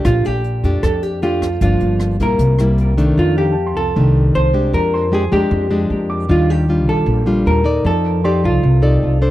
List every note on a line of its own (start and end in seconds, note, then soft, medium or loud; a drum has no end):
0.00 0.41 A3 soft
0.00 0.41 D4 medium
0.00 0.42 G4 medium
0.05 0.23 A#1 medium
0.05 0.81 A#2 soft
0.05 0.26 F4 medium
0.05 kick medium
0.05 cross-stick medium
0.05 closed hi-hat soft
0.25 0.62 A#1 medium
0.25 0.83 G4 medium
0.25 closed hi-hat soft
0.44 closed hi-hat soft
0.63 0.82 F2 medium
0.63 1.19 A3 medium
0.63 1.20 D4 medium
0.63 1.20 G4 medium
0.63 kick soft
0.63 closed hi-hat soft
0.83 1.57 F2 medium
0.83 1.59 F2 soft
0.83 1.03 A4 medium
0.83 kick soft
0.83 cross-stick soft
0.83 closed hi-hat soft
1.03 1.23 G4 medium
1.03 closed hi-hat soft
1.22 1.48 A3 medium
1.22 1.48 D4 soft
1.22 1.61 F4 medium
1.22 1.48 G4 medium
1.22 closed hi-hat soft
1.42 kick soft
1.42 cross-stick soft
1.42 closed hi-hat soft
1.61 1.79 G1 medium
1.61 2.38 G2 soft
1.61 2.17 F3 soft
1.61 2.17 A#3 soft
1.61 2.18 D4 medium
1.61 2.22 F4 medium
1.61 kick medium
1.61 closed hi-hat soft
1.80 2.17 G1 medium
1.80 closed hi-hat soft
2.00 cross-stick soft
2.00 closed hi-hat soft
2.20 2.38 A#1 medium
2.20 2.56 G3 medium
2.20 2.56 A#3 medium
2.20 2.57 E4 medium
2.20 2.76 A#4 medium
2.20 kick soft
2.20 closed hi-hat soft
2.39 3.13 C2 medium
2.39 3.16 C3 soft
2.39 kick soft
2.39 closed hi-hat medium
2.59 2.95 G3 soft
2.59 2.96 A#3 medium
2.59 2.96 E4 medium
2.59 cross-stick medium
2.59 closed hi-hat soft
2.78 closed hi-hat soft
2.97 3.55 D#3 medium
2.97 3.55 A3 medium
2.97 3.55 D4 medium
2.97 kick soft
2.97 closed hi-hat soft
3.17 3.93 F2 soft
3.17 3.77 F2 medium
3.17 3.37 F4 medium
3.37 3.77 G4 medium
3.37 4.19 F5 soft
3.52 4.32 A5 soft
3.66 4.44 C6 soft
3.77 3.94 C2 medium
3.77 4.35 A4 medium
3.95 4.32 C2 medium
3.95 4.71 C3 soft
3.95 4.51 D#3 soft
3.95 4.51 A3 soft
3.95 4.51 D4 soft
4.35 4.71 C2 medium
4.35 4.74 C5 medium
4.53 5.09 G#3 medium
4.53 5.09 D4 medium
4.53 5.09 G4 medium
4.73 5.28 F2 medium
4.73 5.49 F3 soft
4.73 5.14 A#4 medium
4.94 5.76 C6 soft
5.12 5.23 G#3 soft
5.12 5.24 D4 soft
5.12 5.24 G4 medium
5.12 5.33 G#4 medium
5.32 5.50 F2 medium
5.32 5.68 G#3 medium
5.32 5.68 D4 medium
5.32 5.68 G4 medium
5.32 6.06 G4 medium
5.51 5.87 F2 loud
5.51 6.27 F3 medium
5.71 6.26 G#3 medium
5.71 6.26 D4 medium
5.71 6.26 G4 medium
5.90 6.26 F2 medium
6.10 6.46 D6 soft
6.29 6.87 D#2 medium
6.29 7.05 D#3 soft
6.29 6.65 G3 medium
6.29 6.65 D4 soft
6.29 6.65 F4 medium
6.29 6.50 F4 medium
6.50 6.90 G4 medium
6.69 7.24 G3 soft
6.69 7.24 D4 soft
6.69 7.24 F4 medium
6.87 7.06 A#1 medium
6.87 7.47 A4 medium
7.06 7.43 A#1 medium
7.06 7.83 A#2 medium
7.26 7.62 G3 medium
7.26 7.63 D4 medium
7.26 7.63 F4 medium
7.46 7.82 D#2 medium
7.46 7.86 A#4 medium
7.64 8.20 D#4 soft
7.64 8.21 A4 medium
7.64 8.21 D5 medium
7.84 8.45 F2 medium
7.84 8.61 F3 soft
7.84 8.26 A4 medium
8.24 8.63 D#4 soft
8.24 8.45 G4 medium
8.24 8.63 A4 medium
8.24 8.64 D5 medium
8.24 9.07 C6 soft
8.44 8.62 C2 medium
8.44 9.19 F4 medium
8.63 9.00 C2 medium
8.63 9.31 C3 medium
8.82 9.19 D#4 medium
8.82 9.19 A4 medium
8.82 9.19 D5 medium
9.03 9.31 C2 medium
9.22 9.31 D4 medium
9.22 9.31 A4 medium
9.22 9.31 C5 medium